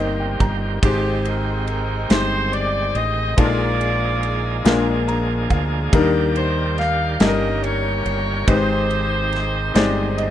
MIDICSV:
0, 0, Header, 1, 6, 480
1, 0, Start_track
1, 0, Tempo, 849858
1, 467, Time_signature, 6, 3, 24, 8
1, 5820, End_track
2, 0, Start_track
2, 0, Title_t, "Saxophone section"
2, 0, Program_c, 0, 65
2, 473, Note_on_c, 0, 63, 83
2, 473, Note_on_c, 0, 67, 95
2, 475, Note_on_c, 0, 60, 85
2, 694, Note_off_c, 0, 67, 0
2, 712, Note_on_c, 0, 70, 93
2, 946, Note_off_c, 0, 70, 0
2, 953, Note_on_c, 0, 70, 93
2, 1168, Note_off_c, 0, 63, 0
2, 1169, Note_off_c, 0, 60, 0
2, 1174, Note_off_c, 0, 70, 0
2, 1188, Note_on_c, 0, 72, 112
2, 1426, Note_on_c, 0, 74, 104
2, 1428, Note_off_c, 0, 72, 0
2, 1667, Note_off_c, 0, 74, 0
2, 1668, Note_on_c, 0, 75, 112
2, 1906, Note_on_c, 0, 74, 109
2, 1908, Note_off_c, 0, 75, 0
2, 1916, Note_on_c, 0, 65, 90
2, 1916, Note_on_c, 0, 68, 82
2, 2845, Note_off_c, 0, 74, 0
2, 2850, Note_off_c, 0, 65, 0
2, 2850, Note_off_c, 0, 68, 0
2, 3592, Note_on_c, 0, 72, 93
2, 3814, Note_off_c, 0, 72, 0
2, 3829, Note_on_c, 0, 77, 106
2, 4052, Note_off_c, 0, 77, 0
2, 4067, Note_on_c, 0, 75, 117
2, 4075, Note_on_c, 0, 70, 75
2, 4304, Note_on_c, 0, 73, 98
2, 4308, Note_off_c, 0, 75, 0
2, 4311, Note_off_c, 0, 70, 0
2, 4318, Note_on_c, 0, 70, 74
2, 4770, Note_off_c, 0, 70, 0
2, 4781, Note_on_c, 0, 72, 106
2, 4786, Note_off_c, 0, 73, 0
2, 4794, Note_on_c, 0, 63, 72
2, 4795, Note_on_c, 0, 67, 79
2, 5820, Note_off_c, 0, 63, 0
2, 5820, Note_off_c, 0, 67, 0
2, 5820, Note_off_c, 0, 72, 0
2, 5820, End_track
3, 0, Start_track
3, 0, Title_t, "Grand piano"
3, 0, Program_c, 1, 0
3, 0, Control_c, 1, 64, 127
3, 0, Note_on_c, 1, 51, 63
3, 0, Note_on_c, 1, 58, 86
3, 0, Note_on_c, 1, 60, 76
3, 0, Note_on_c, 1, 63, 86
3, 0, Note_on_c, 1, 67, 76
3, 0, Note_on_c, 1, 70, 70
3, 0, Note_on_c, 1, 72, 87
3, 0, Note_on_c, 1, 75, 79
3, 99, Note_off_c, 1, 75, 0
3, 113, Note_on_c, 1, 79, 66
3, 222, Note_off_c, 1, 79, 0
3, 231, Note_on_c, 1, 82, 70
3, 377, Note_off_c, 1, 58, 0
3, 378, Note_off_c, 1, 60, 0
3, 380, Note_off_c, 1, 63, 0
3, 380, Note_off_c, 1, 67, 0
3, 400, Note_off_c, 1, 72, 0
3, 452, Note_off_c, 1, 82, 0
3, 465, Note_on_c, 1, 56, 79
3, 468, Note_on_c, 1, 60, 77
3, 469, Note_on_c, 1, 63, 76
3, 470, Note_on_c, 1, 44, 62
3, 472, Note_on_c, 1, 67, 69
3, 473, Control_c, 1, 64, 0
3, 473, Note_on_c, 1, 72, 85
3, 474, Note_off_c, 1, 70, 0
3, 476, Note_off_c, 1, 51, 0
3, 575, Control_c, 1, 64, 127
3, 1099, Note_off_c, 1, 56, 0
3, 1100, Note_off_c, 1, 60, 0
3, 1101, Note_off_c, 1, 63, 0
3, 1102, Note_off_c, 1, 67, 0
3, 1103, Note_off_c, 1, 72, 0
3, 1167, Note_off_c, 1, 44, 0
3, 1179, Note_on_c, 1, 56, 70
3, 1183, Note_on_c, 1, 60, 71
3, 1186, Note_on_c, 1, 63, 63
3, 1190, Note_on_c, 1, 67, 66
3, 1191, Note_on_c, 1, 72, 81
3, 1816, Note_off_c, 1, 56, 0
3, 1818, Note_off_c, 1, 60, 0
3, 1819, Note_off_c, 1, 63, 0
3, 1821, Note_off_c, 1, 67, 0
3, 1822, Note_off_c, 1, 72, 0
3, 1902, Note_on_c, 1, 56, 81
3, 1903, Note_on_c, 1, 58, 66
3, 1905, Note_on_c, 1, 46, 58
3, 1906, Note_on_c, 1, 63, 74
3, 1909, Note_on_c, 1, 65, 65
3, 1911, Note_on_c, 1, 69, 76
3, 1914, Control_c, 1, 64, 0
3, 1947, Note_off_c, 1, 69, 0
3, 1949, Note_on_c, 1, 70, 88
3, 2026, Control_c, 1, 64, 127
3, 2537, Note_off_c, 1, 56, 0
3, 2538, Note_off_c, 1, 58, 0
3, 2539, Note_off_c, 1, 63, 0
3, 2541, Note_off_c, 1, 65, 0
3, 2561, Note_off_c, 1, 70, 0
3, 2605, Note_off_c, 1, 46, 0
3, 2622, Note_on_c, 1, 56, 81
3, 2624, Note_on_c, 1, 58, 77
3, 2628, Note_on_c, 1, 46, 81
3, 2628, Note_on_c, 1, 62, 79
3, 2630, Note_on_c, 1, 65, 67
3, 2632, Note_on_c, 1, 70, 81
3, 2635, Control_c, 1, 64, 0
3, 2731, Control_c, 1, 64, 127
3, 2869, Note_on_c, 1, 82, 75
3, 3092, Note_off_c, 1, 82, 0
3, 3108, Note_on_c, 1, 77, 63
3, 3258, Note_off_c, 1, 56, 0
3, 3259, Note_off_c, 1, 58, 0
3, 3261, Note_off_c, 1, 62, 0
3, 3261, Note_off_c, 1, 65, 0
3, 3263, Note_off_c, 1, 70, 0
3, 3326, Note_off_c, 1, 46, 0
3, 3332, Note_off_c, 1, 77, 0
3, 3345, Note_on_c, 1, 55, 94
3, 3348, Note_on_c, 1, 58, 85
3, 3350, Note_on_c, 1, 51, 68
3, 3351, Note_on_c, 1, 62, 89
3, 3353, Note_on_c, 1, 63, 93
3, 3356, Control_c, 1, 64, 0
3, 3357, Note_on_c, 1, 70, 103
3, 3449, Control_c, 1, 64, 127
3, 3979, Note_off_c, 1, 55, 0
3, 3980, Note_off_c, 1, 58, 0
3, 3982, Note_off_c, 1, 62, 0
3, 3983, Note_off_c, 1, 63, 0
3, 3985, Note_off_c, 1, 70, 0
3, 4047, Note_off_c, 1, 51, 0
3, 4064, Note_on_c, 1, 55, 72
3, 4066, Note_on_c, 1, 58, 63
3, 4068, Note_on_c, 1, 61, 64
3, 4069, Note_on_c, 1, 43, 67
3, 4072, Note_on_c, 1, 63, 66
3, 4075, Note_on_c, 1, 69, 60
3, 4077, Control_c, 1, 64, 0
3, 4108, Note_off_c, 1, 69, 0
3, 4111, Note_on_c, 1, 70, 72
3, 4184, Control_c, 1, 64, 127
3, 4698, Note_off_c, 1, 55, 0
3, 4699, Note_off_c, 1, 58, 0
3, 4700, Note_off_c, 1, 61, 0
3, 4702, Note_off_c, 1, 63, 0
3, 4721, Note_off_c, 1, 70, 0
3, 4766, Note_off_c, 1, 43, 0
3, 4785, Note_on_c, 1, 56, 78
3, 4788, Note_on_c, 1, 60, 67
3, 4790, Note_on_c, 1, 63, 74
3, 4792, Note_on_c, 1, 44, 57
3, 4793, Note_on_c, 1, 67, 72
3, 4797, Control_c, 1, 64, 0
3, 4797, Note_on_c, 1, 71, 77
3, 4829, Note_off_c, 1, 71, 0
3, 4832, Note_on_c, 1, 72, 82
3, 4895, Control_c, 1, 64, 127
3, 5418, Note_off_c, 1, 56, 0
3, 5420, Note_off_c, 1, 60, 0
3, 5421, Note_off_c, 1, 63, 0
3, 5422, Note_off_c, 1, 67, 0
3, 5442, Note_off_c, 1, 72, 0
3, 5487, Note_off_c, 1, 44, 0
3, 5501, Note_on_c, 1, 56, 91
3, 5505, Note_on_c, 1, 60, 70
3, 5505, Note_on_c, 1, 63, 80
3, 5508, Note_on_c, 1, 67, 70
3, 5510, Note_on_c, 1, 74, 84
3, 5747, Note_on_c, 1, 75, 77
3, 5820, Note_off_c, 1, 56, 0
3, 5820, Note_off_c, 1, 60, 0
3, 5820, Note_off_c, 1, 63, 0
3, 5820, Note_off_c, 1, 67, 0
3, 5820, Note_off_c, 1, 74, 0
3, 5820, Note_off_c, 1, 75, 0
3, 5820, End_track
4, 0, Start_track
4, 0, Title_t, "Tonewheel organ"
4, 0, Program_c, 2, 16
4, 0, Note_on_c, 2, 51, 61
4, 0, Note_on_c, 2, 55, 60
4, 0, Note_on_c, 2, 58, 58
4, 0, Note_on_c, 2, 60, 58
4, 0, Note_on_c, 2, 67, 70
4, 447, Note_off_c, 2, 55, 0
4, 447, Note_off_c, 2, 58, 0
4, 447, Note_off_c, 2, 60, 0
4, 448, Note_off_c, 2, 51, 0
4, 464, Note_off_c, 2, 67, 0
4, 469, Note_on_c, 2, 60, 64
4, 470, Note_on_c, 2, 51, 63
4, 471, Note_on_c, 2, 67, 74
4, 474, Note_on_c, 2, 56, 61
4, 1887, Note_off_c, 2, 60, 0
4, 1888, Note_off_c, 2, 51, 0
4, 1888, Note_off_c, 2, 67, 0
4, 1890, Note_off_c, 2, 56, 0
4, 1907, Note_on_c, 2, 53, 66
4, 1909, Note_on_c, 2, 58, 53
4, 1909, Note_on_c, 2, 63, 59
4, 1909, Note_on_c, 2, 68, 73
4, 1910, Note_on_c, 2, 56, 53
4, 2617, Note_off_c, 2, 56, 0
4, 2618, Note_off_c, 2, 53, 0
4, 2620, Note_off_c, 2, 58, 0
4, 2621, Note_off_c, 2, 68, 0
4, 2624, Note_on_c, 2, 56, 71
4, 2625, Note_on_c, 2, 53, 84
4, 2625, Note_on_c, 2, 62, 67
4, 2626, Note_on_c, 2, 58, 74
4, 2628, Note_on_c, 2, 68, 87
4, 2629, Note_off_c, 2, 63, 0
4, 3346, Note_off_c, 2, 56, 0
4, 3347, Note_off_c, 2, 53, 0
4, 3347, Note_off_c, 2, 58, 0
4, 3347, Note_off_c, 2, 62, 0
4, 3348, Note_off_c, 2, 68, 0
4, 3352, Note_on_c, 2, 67, 84
4, 3353, Note_on_c, 2, 51, 80
4, 3353, Note_on_c, 2, 55, 67
4, 3353, Note_on_c, 2, 74, 66
4, 3354, Note_on_c, 2, 58, 75
4, 4062, Note_off_c, 2, 55, 0
4, 4063, Note_off_c, 2, 51, 0
4, 4063, Note_off_c, 2, 58, 0
4, 4063, Note_off_c, 2, 67, 0
4, 4067, Note_on_c, 2, 61, 54
4, 4068, Note_on_c, 2, 55, 62
4, 4070, Note_on_c, 2, 51, 60
4, 4070, Note_on_c, 2, 58, 55
4, 4070, Note_on_c, 2, 67, 65
4, 4071, Note_off_c, 2, 74, 0
4, 4788, Note_off_c, 2, 51, 0
4, 4788, Note_off_c, 2, 55, 0
4, 4788, Note_off_c, 2, 61, 0
4, 4789, Note_off_c, 2, 58, 0
4, 4789, Note_off_c, 2, 67, 0
4, 4790, Note_on_c, 2, 63, 65
4, 4792, Note_on_c, 2, 60, 59
4, 4794, Note_on_c, 2, 51, 66
4, 4794, Note_on_c, 2, 56, 55
4, 5820, Note_off_c, 2, 51, 0
4, 5820, Note_off_c, 2, 56, 0
4, 5820, Note_off_c, 2, 60, 0
4, 5820, Note_off_c, 2, 63, 0
4, 5820, End_track
5, 0, Start_track
5, 0, Title_t, "Fingered electric bass"
5, 0, Program_c, 3, 33
5, 0, Note_on_c, 3, 31, 101
5, 204, Note_off_c, 3, 31, 0
5, 227, Note_on_c, 3, 31, 91
5, 448, Note_off_c, 3, 31, 0
5, 467, Note_on_c, 3, 32, 93
5, 1165, Note_off_c, 3, 32, 0
5, 1187, Note_on_c, 3, 31, 93
5, 1645, Note_off_c, 3, 31, 0
5, 1664, Note_on_c, 3, 33, 85
5, 1887, Note_off_c, 3, 33, 0
5, 1908, Note_on_c, 3, 34, 98
5, 2606, Note_off_c, 3, 34, 0
5, 2628, Note_on_c, 3, 34, 102
5, 3086, Note_off_c, 3, 34, 0
5, 3110, Note_on_c, 3, 38, 83
5, 3330, Note_off_c, 3, 38, 0
5, 3348, Note_on_c, 3, 39, 98
5, 4046, Note_off_c, 3, 39, 0
5, 4067, Note_on_c, 3, 31, 101
5, 4525, Note_off_c, 3, 31, 0
5, 4550, Note_on_c, 3, 31, 92
5, 4770, Note_off_c, 3, 31, 0
5, 4788, Note_on_c, 3, 32, 99
5, 5485, Note_off_c, 3, 32, 0
5, 5509, Note_on_c, 3, 31, 105
5, 5820, Note_off_c, 3, 31, 0
5, 5820, End_track
6, 0, Start_track
6, 0, Title_t, "Drums"
6, 228, Note_on_c, 9, 36, 90
6, 228, Note_on_c, 9, 53, 43
6, 284, Note_off_c, 9, 36, 0
6, 285, Note_off_c, 9, 53, 0
6, 467, Note_on_c, 9, 36, 115
6, 468, Note_on_c, 9, 53, 87
6, 524, Note_off_c, 9, 36, 0
6, 524, Note_off_c, 9, 53, 0
6, 708, Note_on_c, 9, 53, 39
6, 764, Note_off_c, 9, 53, 0
6, 946, Note_on_c, 9, 53, 38
6, 1002, Note_off_c, 9, 53, 0
6, 1187, Note_on_c, 9, 53, 78
6, 1191, Note_on_c, 9, 38, 114
6, 1243, Note_off_c, 9, 53, 0
6, 1248, Note_off_c, 9, 38, 0
6, 1429, Note_on_c, 9, 53, 39
6, 1486, Note_off_c, 9, 53, 0
6, 1667, Note_on_c, 9, 53, 42
6, 1723, Note_off_c, 9, 53, 0
6, 1907, Note_on_c, 9, 53, 85
6, 1908, Note_on_c, 9, 36, 123
6, 1964, Note_off_c, 9, 36, 0
6, 1964, Note_off_c, 9, 53, 0
6, 2150, Note_on_c, 9, 53, 41
6, 2207, Note_off_c, 9, 53, 0
6, 2389, Note_on_c, 9, 53, 42
6, 2445, Note_off_c, 9, 53, 0
6, 2629, Note_on_c, 9, 53, 72
6, 2633, Note_on_c, 9, 38, 122
6, 2685, Note_off_c, 9, 53, 0
6, 2690, Note_off_c, 9, 38, 0
6, 2872, Note_on_c, 9, 53, 44
6, 2928, Note_off_c, 9, 53, 0
6, 3108, Note_on_c, 9, 53, 46
6, 3109, Note_on_c, 9, 36, 89
6, 3165, Note_off_c, 9, 36, 0
6, 3165, Note_off_c, 9, 53, 0
6, 3349, Note_on_c, 9, 36, 123
6, 3349, Note_on_c, 9, 53, 78
6, 3405, Note_off_c, 9, 36, 0
6, 3405, Note_off_c, 9, 53, 0
6, 3590, Note_on_c, 9, 53, 44
6, 3647, Note_off_c, 9, 53, 0
6, 3829, Note_on_c, 9, 53, 35
6, 3842, Note_on_c, 9, 38, 36
6, 3885, Note_off_c, 9, 53, 0
6, 3898, Note_off_c, 9, 38, 0
6, 4067, Note_on_c, 9, 53, 70
6, 4071, Note_on_c, 9, 38, 112
6, 4123, Note_off_c, 9, 53, 0
6, 4128, Note_off_c, 9, 38, 0
6, 4313, Note_on_c, 9, 53, 41
6, 4370, Note_off_c, 9, 53, 0
6, 4550, Note_on_c, 9, 53, 44
6, 4607, Note_off_c, 9, 53, 0
6, 4788, Note_on_c, 9, 36, 119
6, 4788, Note_on_c, 9, 53, 80
6, 4844, Note_off_c, 9, 36, 0
6, 4844, Note_off_c, 9, 53, 0
6, 5030, Note_on_c, 9, 53, 40
6, 5086, Note_off_c, 9, 53, 0
6, 5267, Note_on_c, 9, 53, 37
6, 5280, Note_on_c, 9, 38, 38
6, 5323, Note_off_c, 9, 53, 0
6, 5336, Note_off_c, 9, 38, 0
6, 5509, Note_on_c, 9, 53, 70
6, 5514, Note_on_c, 9, 38, 117
6, 5566, Note_off_c, 9, 53, 0
6, 5570, Note_off_c, 9, 38, 0
6, 5751, Note_on_c, 9, 53, 46
6, 5807, Note_off_c, 9, 53, 0
6, 5820, End_track
0, 0, End_of_file